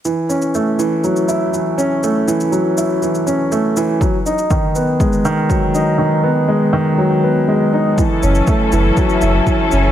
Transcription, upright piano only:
X:1
M:4/4
L:1/8
Q:1/4=121
K:F#dor
V:1 name="Upright piano" clef=bass
E, C A, E, F, E E, C | A, E, F, E E, C A, E, | F, D D, B, G, D, F, D | D, B, G, D, F, B, G, D |
E, C A, E, F, E E, C |]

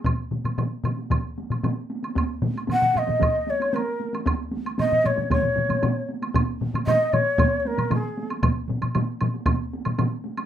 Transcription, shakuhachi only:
X:1
M:4/4
L:1/16
Q:1/4=115
K:none
V:1 name="Shakuhachi"
z16 | z4 _g2 _e4 _d2 _B3 z | z4 _e2 _d2 d6 z2 | z4 _e2 _d3- d/2 d/2 _B2 _A3 z |
z16 |]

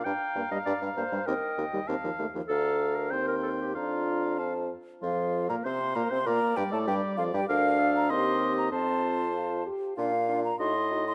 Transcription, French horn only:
X:1
M:2/4
L:1/16
Q:1/4=97
K:Bb
V:1 name="French horn"
D z B, G, D G, B, G, | C z B, G, C F, A, F, | D4 C4 | D4 C2 z2 |
F,3 B, C2 B, C | B,2 G, A, G,2 F, G, | D4 C4 | C4 F2 G2 |
D2 D2 E2 E2 |]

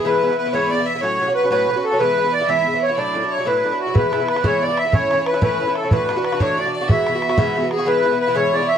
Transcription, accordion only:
X:1
M:6/8
L:1/8
Q:3/8=123
K:Emix
V:1 name="Accordion"
B2 B c d e | c2 B B2 A | B2 d e2 c | d2 c B2 F |
B2 B c d e | c2 B B2 A | B2 B c d d | e4- e G |
B2 B c d e |]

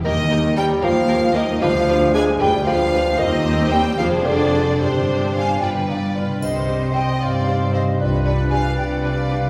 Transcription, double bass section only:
X:1
M:6/8
L:1/8
Q:3/8=76
K:Cm
V:1 name="Double bass section" clef=bass
E,,3 E,,3 | D,,3 D,,3 | E,,3 F,,,3 | G,,,3 G,,,2 z |
C,,3 G,,,3 | C,,3 C,,3 |]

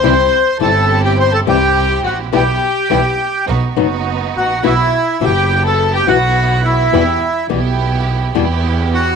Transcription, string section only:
X:1
M:4/4
L:1/8
Q:1/4=105
K:Em
V:1 name="String section"
[CEG] z [CEG]3 [CEG]3 | [B,EG] z [B,EG] z [B,^DF] [B,DF]3 | [B,EF] z [B,E]3 [B,EF]3 | [B,EG] z [B,EG]3 [B,EG]3 |]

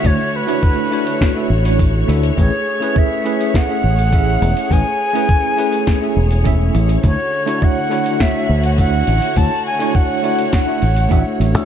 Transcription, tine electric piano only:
X:1
M:4/4
L:1/16
Q:1/4=103
K:Dlyd
V:1 name="Tine electric piano"
[A,DEFc] z2 [A,DEFc]3 [A,DEFc]3 [A,DEFe] z [A,DEFc]3 [A,DEFe]2 | [A,CEGB] z2 [A,CEGB]3 [A,CEGB]3 [A,CEGe] z2 [A,CEGe]4 | [A,CEGB] z2 [A,CEGB]3 [A,CEGB]3 [A,CEGe] z2 [A,CEGe]4 | [A,DEFc] z2 [A,DEFc]3 [A,DEFc]3 [A,DEFe] z2 [A,DEFe]4 |
[A,DEFc] z2 [A,DEFc]3 [A,DEFc]3 [A,DEFe] z2 [A,DEFe]4 |]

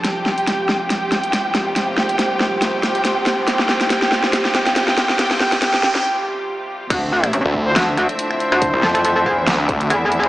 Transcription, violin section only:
X:1
M:4/4
L:1/8
Q:"Swing 16ths" 1/4=140
K:Dm
V:1 name="Violin section"
[Gg]4 [Gg]4 | [Gg]4 [Gg]4 | [Gg]2 [Gg]2 [Gg]2 [Gg]2 | [Gg] [Gg] [Gg] [Gg] z4 |
z8 | z8 |]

